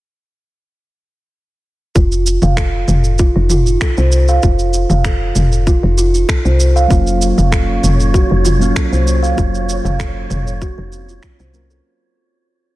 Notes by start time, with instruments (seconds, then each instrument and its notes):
1.95 fm bass F1, kalimba F4, kick, cabasa
2.12 cabasa
2.27 cabasa
2.42 fm bass F1, kalimba F5, mid tom, cabasa
2.57 kalimba A4, finger snap, kick, cabasa
2.88 fm bass F1, mid tom, cabasa
3.04 cabasa
3.19 kalimba F4, kick, cabasa
3.36 fm bass F1, kalimba D#4
3.50 kalimba F4, mid tom, cabasa
3.67 cabasa
3.81 kalimba A4, finger snap, kick, cabasa
3.97 fm bass C2, kalimba C5, cabasa
4.12 cabasa
4.28 kalimba F5, cabasa
4.43 fm bass F1, kalimba F4, kick, cabasa
4.59 cabasa
4.74 cabasa
4.90 fm bass F1, kalimba F5, mid tom, cabasa
5.05 kalimba A4, finger snap, kick, cabasa
5.35 fm bass F1, mid tom, cabasa
5.52 cabasa
5.67 kalimba F4, kick, cabasa
5.83 fm bass F1, kalimba D#4
5.98 kalimba F4, cabasa
6.15 cabasa
6.29 kalimba A4, finger snap, kick, cabasa
6.45 fm bass C2, kalimba C5, cabasa
6.60 cabasa
6.76 kalimba F5, cabasa
6.88 fm bass F1, synth keys F#3 A#3 C#4 F5, kalimba F4, synth texture C#5, kick, cabasa
7.07 cabasa
7.22 cabasa
7.38 fm bass F1, kalimba F5, mid tom, cabasa
7.52 kalimba A4, finger snap, kick, cabasa
7.84 fm bass F1, mid tom, cabasa
8.00 cabasa
8.14 kalimba F#4, kick, cabasa
8.30 fm bass F1, kalimba D#4
8.45 kalimba F4, mid tom, cabasa
8.59 synth keys F#3 A#3 C#4 F5, cabasa
8.76 kalimba A4, finger snap, kick, cabasa
8.92 fm bass C2, kalimba C5, cabasa
9.08 cabasa
9.23 kalimba F5, cabasa
9.35 fm bass F1, synth keys F#3 A#3 C#4 F4, kalimba F4, kick, cabasa
9.55 cabasa
9.69 cabasa
9.85 fm bass F1, kalimba F5, mid tom, cabasa
9.99 kalimba A4, finger snap, kick, cabasa
10.30 fm bass F1, mid tom, cabasa
10.47 cabasa
10.62 kalimba F#4, kick, cabasa
10.78 fm bass F1, kalimba D#4
10.92 kalimba C4, cabasa
11.08 kalimba F4, cabasa
11.23 finger snap, kick, cabasa
11.39 fm bass C2, kalimba C5, cabasa
11.53 synth keys F#3 A#3 C#4 F4 A#4, cabasa
11.70 kalimba A4, cabasa